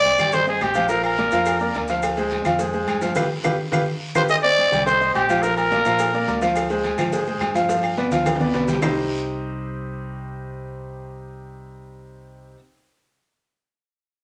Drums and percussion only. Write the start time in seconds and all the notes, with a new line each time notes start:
0.04 cowbell, high conga, low agogo, short guiro, maracas
0.18 cowbell, high conga, low conga, low agogo, short guiro, claves, maracas
0.32 cowbell, high conga, low conga, maracas
0.47 high conga, maracas
0.61 cowbell, high conga, low timbale, low agogo, short guiro, claves, maracas
0.74 cowbell, high conga, short guiro, maracas
0.88 cowbell, high conga, low agogo, long guiro, maracas
1.03 high conga, low agogo, claves, maracas
1.18 cowbell, high conga, short guiro, maracas
1.31 cowbell, high conga, low agogo, short guiro, maracas
1.45 cowbell, high conga, low agogo, long guiro, claves, maracas
1.60 high conga, maracas
1.74 cowbell, high conga, low agogo, short guiro, maracas
1.87 cowbell, short guiro, maracas
2.02 cowbell, high conga, low agogo, long guiro, claves, maracas
2.17 cowbell, high conga, maracas
2.30 cowbell, high conga, low agogo, short guiro, maracas
2.45 cowbell, high conga, low conga, low agogo, short guiro, claves, maracas
2.59 cowbell, high conga, long guiro, maracas
2.73 high conga, maracas
2.88 cowbell, high conga, low agogo, short guiro, claves, maracas
3.01 cowbell, high conga, short guiro, maracas
3.15 cowbell, low conga, high timbale, long guiro, claves, maracas
3.44 cowbell, low conga, high timbale, long guiro, claves, maracas
3.72 cowbell, low conga, high timbale, long guiro, claves, maracas
4.15 cowbell, low conga, high timbale, claves, maracas
4.29 cowbell, high conga, low agogo, maracas
4.44 cowbell, high conga, maracas
4.58 cowbell, high conga, low agogo, short guiro, maracas
4.72 cowbell, high conga, low conga, low agogo, short guiro, maracas
4.86 cowbell, high conga, long guiro, maracas
5.01 high conga, maracas
5.15 cowbell, high conga, low agogo, short guiro, maracas
5.29 cowbell, high conga, short guiro, maracas
5.43 cowbell, high conga, low agogo, long guiro, maracas
5.57 high conga, low agogo, maracas
5.71 cowbell, high conga, short guiro, maracas
5.85 cowbell, high conga, low agogo, short guiro, maracas
5.99 cowbell, high conga, low agogo, long guiro, maracas
6.14 high conga, maracas
6.27 cowbell, high conga, low timbale, low agogo, short guiro, maracas
6.42 cowbell, high conga, short guiro, maracas
6.55 cowbell, high conga, low agogo, long guiro, claves, maracas
6.70 cowbell, high conga, maracas
6.84 cowbell, high conga, low agogo, short guiro, maracas
6.98 cowbell, high conga, low conga, low agogo, short guiro, claves, maracas
7.12 cowbell, high conga, long guiro, maracas
7.26 high conga, maracas
7.40 cowbell, high conga, low timbale, low agogo, short guiro, claves, maracas
7.54 cowbell, high conga, short guiro, maracas
7.69 cowbell, high conga, low agogo, long guiro, maracas
7.83 low agogo, claves, maracas
7.97 cowbell, high conga, short guiro, maracas
8.11 cowbell, low conga, low agogo, short guiro, maracas
8.25 cowbell, low conga, high timbale, low agogo, long guiro, claves, maracas
8.35 low conga, high timbale
8.40 maracas
8.45 high timbale
8.54 cowbell, low timbale, low agogo, short guiro, maracas
8.63 low timbale
8.68 cowbell, low conga, short guiro, maracas
8.73 low timbale
8.82 low bongo, low conga, low timbale, long guiro, claves, maracas